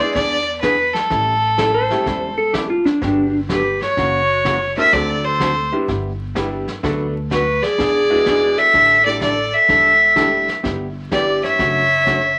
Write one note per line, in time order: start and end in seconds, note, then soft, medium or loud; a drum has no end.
0.00 0.13 G#3 medium
0.00 0.13 B3 medium
0.00 0.13 D4 medium
0.00 0.13 E4 medium
0.00 0.13 G#4 medium
0.00 0.14 D5 loud
0.14 0.91 E2 medium
0.14 0.38 E3 medium
0.14 0.38 B3 medium
0.14 0.38 D4 medium
0.14 0.38 G#4 medium
0.14 0.59 D5 loud
0.14 brush sweep medium
0.14 kick soft
0.14 snare soft
0.61 0.75 E3 medium
0.61 0.75 B3 medium
0.61 0.75 D4 medium
0.61 0.75 G#4 medium
0.61 0.95 B4 medium
0.61 kick soft
0.61 snare medium
0.61 hi-hat pedal medium
0.94 2.53 A4 medium
0.94 snare soft
1.10 1.87 A1 medium
1.10 1.33 E3 medium
1.10 1.33 G3 medium
1.10 1.34 C#4 medium
1.10 1.34 E4 medium
1.10 1.34 A4 medium
1.10 brush sweep medium
1.10 kick soft
1.10 snare soft
1.58 1.70 E3 medium
1.58 1.71 G3 medium
1.58 1.71 C#4 medium
1.58 1.71 E4 medium
1.58 1.74 A4 medium
1.58 1.71 A4 medium
1.58 kick soft
1.58 snare medium
1.58 hi-hat pedal medium
1.74 2.36 C5 medium
1.90 2.04 G3 medium
1.90 2.05 A3 medium
1.90 2.05 C#4 medium
1.90 2.05 E4 medium
1.90 2.05 G4 medium
1.90 snare soft
2.06 2.83 E1 medium
2.06 2.29 E3 medium
2.06 2.29 G3 medium
2.06 2.29 C#4 medium
2.06 2.29 E4 medium
2.06 2.30 A4 medium
2.06 brush sweep soft
2.06 kick soft
2.06 snare soft
2.38 2.53 A4 medium
2.54 2.66 E3 medium
2.54 2.66 G3 medium
2.54 2.66 C#4 medium
2.54 2.66 E4 medium
2.54 2.69 G4 medium
2.54 2.66 A4 medium
2.54 kick soft
2.54 snare medium
2.54 hi-hat pedal medium
2.70 2.85 F4 medium
2.85 3.40 D4 medium
2.85 snare soft
3.01 3.78 G1 medium
3.01 3.24 D3 medium
3.01 3.25 F#3 medium
3.01 3.30 G3 medium
3.01 3.30 B3 medium
3.01 3.25 B3 medium
3.01 3.30 D4 medium
3.01 3.25 D4 medium
3.01 3.31 F#4 medium
3.01 3.31 G4 medium
3.01 3.25 G4 medium
3.01 brush sweep soft
3.01 kick soft
3.01 snare soft
3.49 3.61 D3 medium
3.49 3.61 F#3 medium
3.49 3.62 B3 medium
3.49 3.62 D4 medium
3.49 3.79 G4 medium
3.49 3.62 G4 medium
3.49 3.80 B4 medium
3.49 kick soft
3.49 snare medium
3.49 hi-hat pedal medium
3.82 4.73 F#4 medium
3.82 4.73 C#5 medium
3.82 snare soft
3.97 4.73 F#1 medium
3.97 4.20 C#3 medium
3.97 4.20 E3 medium
3.97 4.20 A#3 medium
3.97 4.20 C#4 medium
3.97 4.20 F#4 medium
3.97 brush sweep medium
3.97 kick soft
3.97 snare soft
4.45 4.57 C#3 medium
4.45 4.57 E3 medium
4.45 4.57 A#3 medium
4.45 4.57 C#4 medium
4.45 4.57 F#4 medium
4.45 kick soft
4.45 snare medium
4.45 hi-hat pedal medium
4.77 5.37 F#3 medium
4.77 5.37 A3 medium
4.77 5.37 C4 medium
4.77 5.37 D4 medium
4.77 5.37 A4 medium
4.77 4.95 A#4 medium
4.77 4.95 E5 loud
4.77 snare soft
4.92 5.69 D2 medium
4.92 5.15 D3 medium
4.92 5.15 A3 medium
4.92 5.16 C4 medium
4.92 5.16 F#4 medium
4.92 5.16 A4 medium
4.92 5.26 A4 medium
4.92 5.26 D5 medium
4.92 brush sweep medium
4.92 kick soft
4.92 snare soft
5.25 5.73 A4 medium
5.25 5.72 C5 medium
5.40 5.52 D3 medium
5.40 5.52 A3 medium
5.40 5.53 C4 medium
5.40 5.52 F#4 medium
5.40 5.53 A4 medium
5.40 kick soft
5.40 snare medium
5.40 hi-hat pedal medium
5.72 5.86 G3 medium
5.72 5.86 B3 medium
5.72 5.87 D4 medium
5.72 5.86 E4 medium
5.72 5.87 G4 medium
5.88 6.64 G1 medium
5.88 6.11 G3 medium
5.88 6.11 B3 medium
5.88 6.11 E4 medium
5.88 6.11 G4 medium
5.88 brush sweep soft
5.88 kick soft
5.88 snare soft
6.35 6.64 G3 medium
6.35 6.47 G3 medium
6.35 6.64 B3 medium
6.35 6.48 B3 medium
6.35 6.64 D4 medium
6.35 6.64 E4 medium
6.35 6.48 E4 medium
6.35 6.64 G4 medium
6.35 6.48 G4 medium
6.35 kick soft
6.35 snare medium
6.35 hi-hat pedal medium
6.68 snare soft
6.83 7.60 D2 medium
6.83 7.06 D3 medium
6.83 7.06 F#3 medium
6.83 7.12 A3 medium
6.83 7.12 B3 medium
6.83 7.06 B3 medium
6.83 7.12 D4 medium
6.83 7.12 F#4 medium
6.83 7.07 F#4 medium
6.83 7.12 A4 medium
6.83 7.07 B4 medium
6.83 brush sweep soft
6.83 kick soft
6.83 snare soft
7.31 7.43 D3 medium
7.31 7.43 F#3 medium
7.31 7.43 B3 medium
7.31 7.64 F#4 medium
7.31 7.44 F#4 medium
7.31 7.64 B4 medium
7.31 7.44 B4 medium
7.31 kick soft
7.31 snare medium
7.31 hi-hat pedal soft
7.62 8.59 G#4 medium
7.62 8.60 D5 loud
7.62 snare soft
7.78 8.55 E2 medium
7.78 8.01 E3 medium
7.78 8.01 B3 medium
7.78 8.02 D4 medium
7.78 8.02 G#4 medium
7.78 brush sweep medium
7.78 kick soft
7.78 snare soft
8.10 8.71 G#3 medium
8.10 8.71 B3 medium
8.10 8.71 D4 medium
8.10 8.71 E4 medium
8.10 8.71 F#4 medium
8.26 8.38 E3 medium
8.26 8.38 B3 medium
8.26 8.39 D4 medium
8.26 8.39 G#4 medium
8.26 kick soft
8.26 snare medium
8.26 hi-hat pedal medium
8.58 9.06 A4 medium
8.58 9.05 E5 loud
8.58 snare soft
8.74 9.50 A1 medium
8.74 8.97 D3 medium
8.74 8.97 G3 medium
8.74 8.97 D4 medium
8.74 8.97 E4 medium
8.74 8.97 A4 medium
8.74 brush sweep soft
8.74 kick soft
8.74 snare soft
9.05 9.20 G3 medium
9.05 9.20 A3 medium
9.05 9.20 D4 medium
9.05 9.20 E4 medium
9.05 9.20 G4 medium
9.05 9.21 A4 medium
9.05 9.20 D5 medium
9.21 9.33 D3 medium
9.21 9.33 G3 medium
9.21 9.34 D4 medium
9.21 9.34 E4 medium
9.21 9.54 A4 medium
9.21 9.34 A4 medium
9.21 9.55 D5 medium
9.21 kick soft
9.21 snare medium
9.21 hi-hat pedal medium
9.54 10.49 A4 medium
9.54 10.49 E5 medium
9.69 10.45 E1 medium
9.69 9.92 D3 medium
9.69 9.92 G3 medium
9.69 9.92 D4 medium
9.69 9.92 E4 medium
9.69 9.92 A4 medium
9.69 brush sweep medium
9.69 kick soft
9.69 snare soft
10.16 10.28 D3 medium
10.16 10.45 G3 medium
10.16 10.29 G3 medium
10.16 10.45 A3 medium
10.16 10.45 D4 medium
10.16 10.29 D4 medium
10.16 10.45 E4 medium
10.16 10.29 E4 medium
10.16 10.45 G4 medium
10.16 10.29 A4 medium
10.16 kick soft
10.16 snare medium
10.16 hi-hat pedal medium
10.48 snare soft
10.63 11.40 G1 medium
10.63 10.87 G3 medium
10.63 10.87 B3 medium
10.63 10.87 E4 medium
10.63 10.87 G4 medium
10.63 brush sweep soft
10.63 kick soft
10.63 snare soft
11.11 11.24 G3 medium
11.11 11.59 G3 medium
11.11 11.59 B3 medium
11.11 11.24 B3 medium
11.11 11.60 D4 medium
11.11 11.59 E4 soft
11.11 11.24 E4 medium
11.11 11.60 G4 medium
11.11 11.42 G4 medium
11.11 11.24 G4 medium
11.11 11.42 D5 medium
11.11 kick soft
11.11 snare medium
11.11 hi-hat pedal medium
11.44 12.35 C#5 medium
11.44 12.35 E5 loud
11.44 snare soft
11.59 12.35 F#1 medium
11.59 11.82 C#3 medium
11.59 11.82 F#3 medium
11.59 11.82 A3 medium
11.59 11.83 D4 medium
11.59 11.83 F#4 medium
11.59 brush sweep medium
11.59 kick soft
11.59 snare soft
12.06 12.19 C#3 medium
12.06 12.19 F#3 medium
12.06 12.19 A3 medium
12.06 12.19 D4 medium
12.06 12.19 F#4 medium
12.06 kick soft
12.06 snare medium
12.06 hi-hat pedal medium